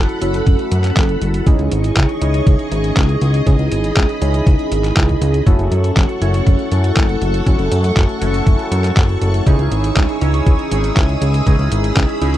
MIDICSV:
0, 0, Header, 1, 5, 480
1, 0, Start_track
1, 0, Tempo, 500000
1, 1407, Time_signature, 4, 2, 24, 8
1, 11880, End_track
2, 0, Start_track
2, 0, Title_t, "String machine"
2, 0, Program_c, 0, 50
2, 0, Note_on_c, 0, 69, 76
2, 0, Note_on_c, 0, 78, 72
2, 0, Note_on_c, 0, 83, 73
2, 1369, Note_off_c, 0, 69, 0
2, 1369, Note_off_c, 0, 78, 0
2, 1387, Note_off_c, 0, 83, 0
2, 1407, Note_on_c, 0, 68, 78
2, 1407, Note_on_c, 0, 75, 73
2, 1407, Note_on_c, 0, 85, 72
2, 3308, Note_off_c, 0, 85, 0
2, 3327, Note_on_c, 0, 83, 75
2, 5208, Note_off_c, 0, 68, 0
2, 5209, Note_off_c, 0, 75, 0
2, 5228, Note_off_c, 0, 83, 0
2, 5247, Note_on_c, 0, 69, 81
2, 5247, Note_on_c, 0, 78, 74
2, 5248, Note_on_c, 0, 85, 75
2, 9049, Note_off_c, 0, 69, 0
2, 9049, Note_off_c, 0, 78, 0
2, 9089, Note_on_c, 0, 68, 79
2, 9089, Note_on_c, 0, 87, 73
2, 9089, Note_on_c, 0, 88, 89
2, 10969, Note_off_c, 0, 85, 0
2, 11007, Note_on_c, 0, 83, 74
2, 11880, Note_off_c, 0, 68, 0
2, 11880, Note_off_c, 0, 83, 0
2, 11880, Note_off_c, 0, 87, 0
2, 11880, Note_off_c, 0, 88, 0
2, 11880, End_track
3, 0, Start_track
3, 0, Title_t, "Analog polysynth"
3, 0, Program_c, 1, 90
3, 0, Note_on_c, 1, 61, 79
3, 0, Note_on_c, 1, 64, 69
3, 0, Note_on_c, 1, 66, 70
3, 0, Note_on_c, 1, 69, 84
3, 178, Note_off_c, 1, 61, 0
3, 178, Note_off_c, 1, 64, 0
3, 178, Note_off_c, 1, 66, 0
3, 178, Note_off_c, 1, 69, 0
3, 207, Note_on_c, 1, 61, 91
3, 207, Note_on_c, 1, 64, 83
3, 207, Note_on_c, 1, 66, 82
3, 207, Note_on_c, 1, 69, 96
3, 1378, Note_off_c, 1, 61, 0
3, 1378, Note_off_c, 1, 64, 0
3, 1378, Note_off_c, 1, 66, 0
3, 1378, Note_off_c, 1, 69, 0
3, 1408, Note_on_c, 1, 61, 91
3, 1408, Note_on_c, 1, 63, 84
3, 1408, Note_on_c, 1, 64, 84
3, 1408, Note_on_c, 1, 68, 101
3, 2099, Note_off_c, 1, 61, 0
3, 2099, Note_off_c, 1, 63, 0
3, 2099, Note_off_c, 1, 64, 0
3, 2099, Note_off_c, 1, 68, 0
3, 2127, Note_on_c, 1, 61, 94
3, 2128, Note_on_c, 1, 63, 83
3, 2128, Note_on_c, 1, 64, 84
3, 2128, Note_on_c, 1, 73, 102
3, 2578, Note_off_c, 1, 61, 0
3, 2578, Note_off_c, 1, 64, 0
3, 2579, Note_off_c, 1, 63, 0
3, 2579, Note_off_c, 1, 73, 0
3, 2607, Note_on_c, 1, 61, 79
3, 2607, Note_on_c, 1, 63, 71
3, 2607, Note_on_c, 1, 64, 72
3, 2607, Note_on_c, 1, 68, 86
3, 3298, Note_off_c, 1, 61, 0
3, 3298, Note_off_c, 1, 63, 0
3, 3298, Note_off_c, 1, 64, 0
3, 3298, Note_off_c, 1, 68, 0
3, 3327, Note_on_c, 1, 64, 70
3, 3328, Note_on_c, 1, 61, 76
3, 3328, Note_on_c, 1, 63, 70
3, 3328, Note_on_c, 1, 68, 85
3, 4018, Note_off_c, 1, 61, 0
3, 4018, Note_off_c, 1, 64, 0
3, 4019, Note_off_c, 1, 63, 0
3, 4019, Note_off_c, 1, 68, 0
3, 4048, Note_on_c, 1, 61, 91
3, 4048, Note_on_c, 1, 63, 82
3, 4048, Note_on_c, 1, 64, 80
3, 4048, Note_on_c, 1, 68, 100
3, 5218, Note_off_c, 1, 63, 0
3, 5219, Note_off_c, 1, 61, 0
3, 5219, Note_off_c, 1, 64, 0
3, 5219, Note_off_c, 1, 68, 0
3, 5248, Note_on_c, 1, 61, 94
3, 5248, Note_on_c, 1, 64, 86
3, 5248, Note_on_c, 1, 66, 83
3, 5248, Note_on_c, 1, 69, 101
3, 5938, Note_off_c, 1, 69, 0
3, 5939, Note_off_c, 1, 61, 0
3, 5939, Note_off_c, 1, 64, 0
3, 5939, Note_off_c, 1, 66, 0
3, 5967, Note_on_c, 1, 73, 102
3, 5968, Note_on_c, 1, 61, 92
3, 5968, Note_on_c, 1, 64, 84
3, 5968, Note_on_c, 1, 66, 86
3, 6418, Note_off_c, 1, 61, 0
3, 6418, Note_off_c, 1, 66, 0
3, 6418, Note_off_c, 1, 73, 0
3, 6419, Note_off_c, 1, 64, 0
3, 6448, Note_on_c, 1, 61, 77
3, 6448, Note_on_c, 1, 64, 72
3, 6448, Note_on_c, 1, 66, 72
3, 6449, Note_on_c, 1, 69, 87
3, 7139, Note_off_c, 1, 61, 0
3, 7139, Note_off_c, 1, 64, 0
3, 7139, Note_off_c, 1, 66, 0
3, 7139, Note_off_c, 1, 69, 0
3, 7169, Note_on_c, 1, 61, 78
3, 7169, Note_on_c, 1, 64, 70
3, 7169, Note_on_c, 1, 66, 70
3, 7169, Note_on_c, 1, 69, 83
3, 7859, Note_off_c, 1, 61, 0
3, 7859, Note_off_c, 1, 64, 0
3, 7859, Note_off_c, 1, 66, 0
3, 7859, Note_off_c, 1, 69, 0
3, 7888, Note_on_c, 1, 61, 91
3, 7888, Note_on_c, 1, 64, 82
3, 7888, Note_on_c, 1, 66, 80
3, 7888, Note_on_c, 1, 69, 98
3, 9059, Note_off_c, 1, 61, 0
3, 9059, Note_off_c, 1, 64, 0
3, 9059, Note_off_c, 1, 66, 0
3, 9059, Note_off_c, 1, 69, 0
3, 9088, Note_on_c, 1, 61, 92
3, 9088, Note_on_c, 1, 63, 86
3, 9088, Note_on_c, 1, 64, 84
3, 9088, Note_on_c, 1, 68, 102
3, 9779, Note_off_c, 1, 61, 0
3, 9779, Note_off_c, 1, 63, 0
3, 9779, Note_off_c, 1, 64, 0
3, 9779, Note_off_c, 1, 68, 0
3, 9807, Note_on_c, 1, 61, 93
3, 9807, Note_on_c, 1, 63, 83
3, 9807, Note_on_c, 1, 64, 87
3, 9807, Note_on_c, 1, 73, 102
3, 10258, Note_off_c, 1, 61, 0
3, 10258, Note_off_c, 1, 63, 0
3, 10258, Note_off_c, 1, 64, 0
3, 10258, Note_off_c, 1, 73, 0
3, 10288, Note_on_c, 1, 61, 79
3, 10288, Note_on_c, 1, 63, 72
3, 10288, Note_on_c, 1, 64, 74
3, 10288, Note_on_c, 1, 68, 89
3, 10978, Note_off_c, 1, 68, 0
3, 10979, Note_off_c, 1, 61, 0
3, 10979, Note_off_c, 1, 63, 0
3, 10979, Note_off_c, 1, 64, 0
3, 11007, Note_on_c, 1, 63, 69
3, 11008, Note_on_c, 1, 61, 78
3, 11008, Note_on_c, 1, 64, 72
3, 11008, Note_on_c, 1, 68, 87
3, 11698, Note_off_c, 1, 63, 0
3, 11698, Note_off_c, 1, 64, 0
3, 11698, Note_off_c, 1, 68, 0
3, 11699, Note_off_c, 1, 61, 0
3, 11727, Note_on_c, 1, 61, 88
3, 11727, Note_on_c, 1, 63, 83
3, 11727, Note_on_c, 1, 64, 82
3, 11727, Note_on_c, 1, 68, 100
3, 11880, Note_off_c, 1, 61, 0
3, 11880, Note_off_c, 1, 63, 0
3, 11880, Note_off_c, 1, 64, 0
3, 11880, Note_off_c, 1, 68, 0
3, 11880, End_track
4, 0, Start_track
4, 0, Title_t, "Analog synth bass"
4, 0, Program_c, 2, 38
4, 207, Note_on_c, 2, 30, 84
4, 401, Note_off_c, 2, 30, 0
4, 447, Note_on_c, 2, 30, 76
4, 544, Note_off_c, 2, 30, 0
4, 687, Note_on_c, 2, 42, 95
4, 881, Note_off_c, 2, 42, 0
4, 927, Note_on_c, 2, 30, 79
4, 1121, Note_off_c, 2, 30, 0
4, 1167, Note_on_c, 2, 30, 92
4, 1361, Note_off_c, 2, 30, 0
4, 1407, Note_on_c, 2, 37, 100
4, 1504, Note_off_c, 2, 37, 0
4, 1528, Note_on_c, 2, 37, 80
4, 1624, Note_off_c, 2, 37, 0
4, 1648, Note_on_c, 2, 32, 90
4, 1841, Note_off_c, 2, 32, 0
4, 1887, Note_on_c, 2, 37, 82
4, 1984, Note_off_c, 2, 37, 0
4, 2129, Note_on_c, 2, 37, 82
4, 2321, Note_off_c, 2, 37, 0
4, 2367, Note_on_c, 2, 37, 80
4, 2464, Note_off_c, 2, 37, 0
4, 2608, Note_on_c, 2, 32, 96
4, 2801, Note_off_c, 2, 32, 0
4, 2847, Note_on_c, 2, 37, 79
4, 3041, Note_off_c, 2, 37, 0
4, 3088, Note_on_c, 2, 37, 93
4, 3281, Note_off_c, 2, 37, 0
4, 3327, Note_on_c, 2, 37, 98
4, 3424, Note_off_c, 2, 37, 0
4, 3448, Note_on_c, 2, 37, 78
4, 3544, Note_off_c, 2, 37, 0
4, 3568, Note_on_c, 2, 32, 86
4, 3761, Note_off_c, 2, 32, 0
4, 3807, Note_on_c, 2, 37, 81
4, 3904, Note_off_c, 2, 37, 0
4, 4048, Note_on_c, 2, 37, 83
4, 4241, Note_off_c, 2, 37, 0
4, 4287, Note_on_c, 2, 37, 80
4, 4384, Note_off_c, 2, 37, 0
4, 4527, Note_on_c, 2, 32, 96
4, 4721, Note_off_c, 2, 32, 0
4, 4767, Note_on_c, 2, 37, 76
4, 4961, Note_off_c, 2, 37, 0
4, 5007, Note_on_c, 2, 37, 93
4, 5201, Note_off_c, 2, 37, 0
4, 5247, Note_on_c, 2, 30, 97
4, 5344, Note_off_c, 2, 30, 0
4, 5366, Note_on_c, 2, 30, 82
4, 5464, Note_off_c, 2, 30, 0
4, 5486, Note_on_c, 2, 42, 88
4, 5680, Note_off_c, 2, 42, 0
4, 5727, Note_on_c, 2, 30, 83
4, 5824, Note_off_c, 2, 30, 0
4, 5967, Note_on_c, 2, 30, 82
4, 6161, Note_off_c, 2, 30, 0
4, 6207, Note_on_c, 2, 30, 78
4, 6304, Note_off_c, 2, 30, 0
4, 6447, Note_on_c, 2, 42, 95
4, 6641, Note_off_c, 2, 42, 0
4, 6687, Note_on_c, 2, 30, 80
4, 6881, Note_off_c, 2, 30, 0
4, 6927, Note_on_c, 2, 30, 96
4, 7121, Note_off_c, 2, 30, 0
4, 7167, Note_on_c, 2, 30, 99
4, 7264, Note_off_c, 2, 30, 0
4, 7287, Note_on_c, 2, 30, 83
4, 7384, Note_off_c, 2, 30, 0
4, 7407, Note_on_c, 2, 42, 89
4, 7601, Note_off_c, 2, 42, 0
4, 7647, Note_on_c, 2, 30, 82
4, 7744, Note_off_c, 2, 30, 0
4, 7888, Note_on_c, 2, 30, 85
4, 8081, Note_off_c, 2, 30, 0
4, 8127, Note_on_c, 2, 30, 78
4, 8224, Note_off_c, 2, 30, 0
4, 8367, Note_on_c, 2, 42, 98
4, 8561, Note_off_c, 2, 42, 0
4, 8607, Note_on_c, 2, 30, 80
4, 8801, Note_off_c, 2, 30, 0
4, 8847, Note_on_c, 2, 30, 96
4, 9041, Note_off_c, 2, 30, 0
4, 9087, Note_on_c, 2, 37, 99
4, 9184, Note_off_c, 2, 37, 0
4, 9207, Note_on_c, 2, 37, 81
4, 9304, Note_off_c, 2, 37, 0
4, 9327, Note_on_c, 2, 32, 88
4, 9521, Note_off_c, 2, 32, 0
4, 9567, Note_on_c, 2, 37, 81
4, 9664, Note_off_c, 2, 37, 0
4, 9807, Note_on_c, 2, 37, 83
4, 10001, Note_off_c, 2, 37, 0
4, 10047, Note_on_c, 2, 37, 80
4, 10144, Note_off_c, 2, 37, 0
4, 10288, Note_on_c, 2, 32, 97
4, 10481, Note_off_c, 2, 32, 0
4, 10527, Note_on_c, 2, 37, 79
4, 10721, Note_off_c, 2, 37, 0
4, 10768, Note_on_c, 2, 37, 96
4, 10961, Note_off_c, 2, 37, 0
4, 11007, Note_on_c, 2, 37, 100
4, 11104, Note_off_c, 2, 37, 0
4, 11128, Note_on_c, 2, 37, 83
4, 11225, Note_off_c, 2, 37, 0
4, 11248, Note_on_c, 2, 32, 88
4, 11441, Note_off_c, 2, 32, 0
4, 11487, Note_on_c, 2, 37, 82
4, 11584, Note_off_c, 2, 37, 0
4, 11727, Note_on_c, 2, 37, 84
4, 11880, Note_off_c, 2, 37, 0
4, 11880, End_track
5, 0, Start_track
5, 0, Title_t, "Drums"
5, 87, Note_on_c, 9, 42, 26
5, 183, Note_off_c, 9, 42, 0
5, 206, Note_on_c, 9, 42, 90
5, 302, Note_off_c, 9, 42, 0
5, 327, Note_on_c, 9, 42, 51
5, 423, Note_off_c, 9, 42, 0
5, 446, Note_on_c, 9, 42, 51
5, 447, Note_on_c, 9, 36, 119
5, 542, Note_off_c, 9, 42, 0
5, 543, Note_off_c, 9, 36, 0
5, 567, Note_on_c, 9, 42, 27
5, 663, Note_off_c, 9, 42, 0
5, 686, Note_on_c, 9, 42, 92
5, 782, Note_off_c, 9, 42, 0
5, 806, Note_on_c, 9, 39, 37
5, 806, Note_on_c, 9, 42, 51
5, 902, Note_off_c, 9, 39, 0
5, 902, Note_off_c, 9, 42, 0
5, 926, Note_on_c, 9, 39, 121
5, 926, Note_on_c, 9, 42, 52
5, 927, Note_on_c, 9, 36, 117
5, 1022, Note_off_c, 9, 39, 0
5, 1022, Note_off_c, 9, 42, 0
5, 1023, Note_off_c, 9, 36, 0
5, 1046, Note_on_c, 9, 42, 26
5, 1142, Note_off_c, 9, 42, 0
5, 1167, Note_on_c, 9, 42, 90
5, 1263, Note_off_c, 9, 42, 0
5, 1287, Note_on_c, 9, 42, 52
5, 1383, Note_off_c, 9, 42, 0
5, 1407, Note_on_c, 9, 36, 119
5, 1407, Note_on_c, 9, 42, 52
5, 1503, Note_off_c, 9, 36, 0
5, 1503, Note_off_c, 9, 42, 0
5, 1527, Note_on_c, 9, 42, 25
5, 1623, Note_off_c, 9, 42, 0
5, 1647, Note_on_c, 9, 42, 84
5, 1743, Note_off_c, 9, 42, 0
5, 1768, Note_on_c, 9, 42, 50
5, 1864, Note_off_c, 9, 42, 0
5, 1887, Note_on_c, 9, 36, 117
5, 1888, Note_on_c, 9, 39, 122
5, 1888, Note_on_c, 9, 42, 49
5, 1983, Note_off_c, 9, 36, 0
5, 1984, Note_off_c, 9, 39, 0
5, 1984, Note_off_c, 9, 42, 0
5, 2008, Note_on_c, 9, 42, 25
5, 2104, Note_off_c, 9, 42, 0
5, 2127, Note_on_c, 9, 42, 86
5, 2223, Note_off_c, 9, 42, 0
5, 2248, Note_on_c, 9, 42, 49
5, 2344, Note_off_c, 9, 42, 0
5, 2367, Note_on_c, 9, 36, 122
5, 2368, Note_on_c, 9, 42, 48
5, 2463, Note_off_c, 9, 36, 0
5, 2464, Note_off_c, 9, 42, 0
5, 2488, Note_on_c, 9, 42, 25
5, 2584, Note_off_c, 9, 42, 0
5, 2607, Note_on_c, 9, 42, 88
5, 2703, Note_off_c, 9, 42, 0
5, 2727, Note_on_c, 9, 42, 50
5, 2823, Note_off_c, 9, 42, 0
5, 2847, Note_on_c, 9, 36, 120
5, 2847, Note_on_c, 9, 39, 123
5, 2847, Note_on_c, 9, 42, 51
5, 2943, Note_off_c, 9, 36, 0
5, 2943, Note_off_c, 9, 39, 0
5, 2943, Note_off_c, 9, 42, 0
5, 2966, Note_on_c, 9, 42, 26
5, 3062, Note_off_c, 9, 42, 0
5, 3086, Note_on_c, 9, 42, 86
5, 3182, Note_off_c, 9, 42, 0
5, 3206, Note_on_c, 9, 42, 49
5, 3302, Note_off_c, 9, 42, 0
5, 3327, Note_on_c, 9, 36, 117
5, 3327, Note_on_c, 9, 42, 49
5, 3423, Note_off_c, 9, 36, 0
5, 3423, Note_off_c, 9, 42, 0
5, 3447, Note_on_c, 9, 42, 25
5, 3543, Note_off_c, 9, 42, 0
5, 3567, Note_on_c, 9, 42, 82
5, 3663, Note_off_c, 9, 42, 0
5, 3687, Note_on_c, 9, 42, 48
5, 3783, Note_off_c, 9, 42, 0
5, 3807, Note_on_c, 9, 36, 118
5, 3807, Note_on_c, 9, 39, 121
5, 3807, Note_on_c, 9, 42, 49
5, 3903, Note_off_c, 9, 36, 0
5, 3903, Note_off_c, 9, 39, 0
5, 3903, Note_off_c, 9, 42, 0
5, 3928, Note_on_c, 9, 42, 25
5, 4024, Note_off_c, 9, 42, 0
5, 4047, Note_on_c, 9, 42, 86
5, 4143, Note_off_c, 9, 42, 0
5, 4167, Note_on_c, 9, 42, 47
5, 4263, Note_off_c, 9, 42, 0
5, 4287, Note_on_c, 9, 36, 118
5, 4287, Note_on_c, 9, 42, 48
5, 4383, Note_off_c, 9, 36, 0
5, 4383, Note_off_c, 9, 42, 0
5, 4407, Note_on_c, 9, 42, 25
5, 4503, Note_off_c, 9, 42, 0
5, 4527, Note_on_c, 9, 42, 84
5, 4623, Note_off_c, 9, 42, 0
5, 4648, Note_on_c, 9, 39, 36
5, 4648, Note_on_c, 9, 42, 48
5, 4744, Note_off_c, 9, 39, 0
5, 4744, Note_off_c, 9, 42, 0
5, 4767, Note_on_c, 9, 36, 117
5, 4768, Note_on_c, 9, 39, 118
5, 4768, Note_on_c, 9, 42, 49
5, 4863, Note_off_c, 9, 36, 0
5, 4864, Note_off_c, 9, 39, 0
5, 4864, Note_off_c, 9, 42, 0
5, 4887, Note_on_c, 9, 36, 59
5, 4888, Note_on_c, 9, 42, 24
5, 4983, Note_off_c, 9, 36, 0
5, 4984, Note_off_c, 9, 42, 0
5, 5007, Note_on_c, 9, 42, 86
5, 5103, Note_off_c, 9, 42, 0
5, 5128, Note_on_c, 9, 42, 48
5, 5224, Note_off_c, 9, 42, 0
5, 5247, Note_on_c, 9, 36, 113
5, 5248, Note_on_c, 9, 42, 50
5, 5343, Note_off_c, 9, 36, 0
5, 5344, Note_off_c, 9, 42, 0
5, 5368, Note_on_c, 9, 42, 24
5, 5464, Note_off_c, 9, 42, 0
5, 5488, Note_on_c, 9, 42, 87
5, 5584, Note_off_c, 9, 42, 0
5, 5608, Note_on_c, 9, 42, 49
5, 5704, Note_off_c, 9, 42, 0
5, 5727, Note_on_c, 9, 36, 112
5, 5728, Note_on_c, 9, 39, 112
5, 5728, Note_on_c, 9, 42, 49
5, 5823, Note_off_c, 9, 36, 0
5, 5824, Note_off_c, 9, 39, 0
5, 5824, Note_off_c, 9, 42, 0
5, 5847, Note_on_c, 9, 42, 25
5, 5943, Note_off_c, 9, 42, 0
5, 5968, Note_on_c, 9, 42, 84
5, 6064, Note_off_c, 9, 42, 0
5, 6088, Note_on_c, 9, 42, 49
5, 6184, Note_off_c, 9, 42, 0
5, 6207, Note_on_c, 9, 36, 115
5, 6208, Note_on_c, 9, 42, 48
5, 6303, Note_off_c, 9, 36, 0
5, 6304, Note_off_c, 9, 42, 0
5, 6327, Note_on_c, 9, 42, 25
5, 6423, Note_off_c, 9, 42, 0
5, 6447, Note_on_c, 9, 42, 89
5, 6543, Note_off_c, 9, 42, 0
5, 6567, Note_on_c, 9, 42, 48
5, 6663, Note_off_c, 9, 42, 0
5, 6687, Note_on_c, 9, 36, 115
5, 6687, Note_on_c, 9, 39, 117
5, 6687, Note_on_c, 9, 42, 49
5, 6783, Note_off_c, 9, 36, 0
5, 6783, Note_off_c, 9, 39, 0
5, 6783, Note_off_c, 9, 42, 0
5, 6808, Note_on_c, 9, 42, 25
5, 6904, Note_off_c, 9, 42, 0
5, 6928, Note_on_c, 9, 42, 86
5, 7024, Note_off_c, 9, 42, 0
5, 7048, Note_on_c, 9, 42, 49
5, 7144, Note_off_c, 9, 42, 0
5, 7167, Note_on_c, 9, 36, 110
5, 7167, Note_on_c, 9, 42, 52
5, 7263, Note_off_c, 9, 36, 0
5, 7263, Note_off_c, 9, 42, 0
5, 7287, Note_on_c, 9, 42, 25
5, 7383, Note_off_c, 9, 42, 0
5, 7407, Note_on_c, 9, 42, 87
5, 7503, Note_off_c, 9, 42, 0
5, 7528, Note_on_c, 9, 42, 51
5, 7624, Note_off_c, 9, 42, 0
5, 7647, Note_on_c, 9, 36, 110
5, 7647, Note_on_c, 9, 39, 108
5, 7647, Note_on_c, 9, 42, 50
5, 7743, Note_off_c, 9, 36, 0
5, 7743, Note_off_c, 9, 39, 0
5, 7743, Note_off_c, 9, 42, 0
5, 7768, Note_on_c, 9, 42, 26
5, 7864, Note_off_c, 9, 42, 0
5, 7887, Note_on_c, 9, 42, 85
5, 7983, Note_off_c, 9, 42, 0
5, 8007, Note_on_c, 9, 42, 51
5, 8103, Note_off_c, 9, 42, 0
5, 8127, Note_on_c, 9, 36, 111
5, 8128, Note_on_c, 9, 42, 49
5, 8223, Note_off_c, 9, 36, 0
5, 8224, Note_off_c, 9, 42, 0
5, 8248, Note_on_c, 9, 42, 26
5, 8344, Note_off_c, 9, 42, 0
5, 8368, Note_on_c, 9, 42, 89
5, 8464, Note_off_c, 9, 42, 0
5, 8488, Note_on_c, 9, 39, 35
5, 8488, Note_on_c, 9, 42, 51
5, 8584, Note_off_c, 9, 39, 0
5, 8584, Note_off_c, 9, 42, 0
5, 8607, Note_on_c, 9, 36, 114
5, 8608, Note_on_c, 9, 39, 112
5, 8608, Note_on_c, 9, 42, 52
5, 8703, Note_off_c, 9, 36, 0
5, 8704, Note_off_c, 9, 39, 0
5, 8704, Note_off_c, 9, 42, 0
5, 8728, Note_on_c, 9, 42, 25
5, 8824, Note_off_c, 9, 42, 0
5, 8847, Note_on_c, 9, 42, 90
5, 8943, Note_off_c, 9, 42, 0
5, 8968, Note_on_c, 9, 42, 49
5, 9064, Note_off_c, 9, 42, 0
5, 9087, Note_on_c, 9, 36, 109
5, 9088, Note_on_c, 9, 42, 54
5, 9183, Note_off_c, 9, 36, 0
5, 9184, Note_off_c, 9, 42, 0
5, 9207, Note_on_c, 9, 42, 27
5, 9303, Note_off_c, 9, 42, 0
5, 9328, Note_on_c, 9, 42, 89
5, 9424, Note_off_c, 9, 42, 0
5, 9447, Note_on_c, 9, 42, 54
5, 9543, Note_off_c, 9, 42, 0
5, 9567, Note_on_c, 9, 36, 105
5, 9567, Note_on_c, 9, 39, 111
5, 9567, Note_on_c, 9, 42, 53
5, 9663, Note_off_c, 9, 36, 0
5, 9663, Note_off_c, 9, 39, 0
5, 9663, Note_off_c, 9, 42, 0
5, 9687, Note_on_c, 9, 42, 28
5, 9783, Note_off_c, 9, 42, 0
5, 9806, Note_on_c, 9, 42, 91
5, 9902, Note_off_c, 9, 42, 0
5, 9927, Note_on_c, 9, 42, 53
5, 10023, Note_off_c, 9, 42, 0
5, 10047, Note_on_c, 9, 36, 112
5, 10047, Note_on_c, 9, 42, 52
5, 10143, Note_off_c, 9, 36, 0
5, 10143, Note_off_c, 9, 42, 0
5, 10167, Note_on_c, 9, 42, 27
5, 10263, Note_off_c, 9, 42, 0
5, 10287, Note_on_c, 9, 42, 93
5, 10383, Note_off_c, 9, 42, 0
5, 10407, Note_on_c, 9, 42, 53
5, 10503, Note_off_c, 9, 42, 0
5, 10527, Note_on_c, 9, 36, 112
5, 10527, Note_on_c, 9, 39, 109
5, 10527, Note_on_c, 9, 42, 53
5, 10623, Note_off_c, 9, 36, 0
5, 10623, Note_off_c, 9, 39, 0
5, 10623, Note_off_c, 9, 42, 0
5, 10647, Note_on_c, 9, 42, 27
5, 10743, Note_off_c, 9, 42, 0
5, 10768, Note_on_c, 9, 42, 93
5, 10864, Note_off_c, 9, 42, 0
5, 10888, Note_on_c, 9, 42, 52
5, 10984, Note_off_c, 9, 42, 0
5, 11007, Note_on_c, 9, 36, 110
5, 11008, Note_on_c, 9, 42, 55
5, 11103, Note_off_c, 9, 36, 0
5, 11104, Note_off_c, 9, 42, 0
5, 11128, Note_on_c, 9, 42, 27
5, 11224, Note_off_c, 9, 42, 0
5, 11248, Note_on_c, 9, 42, 97
5, 11344, Note_off_c, 9, 42, 0
5, 11368, Note_on_c, 9, 42, 54
5, 11464, Note_off_c, 9, 42, 0
5, 11487, Note_on_c, 9, 36, 108
5, 11487, Note_on_c, 9, 39, 108
5, 11487, Note_on_c, 9, 42, 54
5, 11583, Note_off_c, 9, 36, 0
5, 11583, Note_off_c, 9, 39, 0
5, 11583, Note_off_c, 9, 42, 0
5, 11607, Note_on_c, 9, 42, 27
5, 11703, Note_off_c, 9, 42, 0
5, 11727, Note_on_c, 9, 42, 95
5, 11823, Note_off_c, 9, 42, 0
5, 11847, Note_on_c, 9, 42, 54
5, 11880, Note_off_c, 9, 42, 0
5, 11880, End_track
0, 0, End_of_file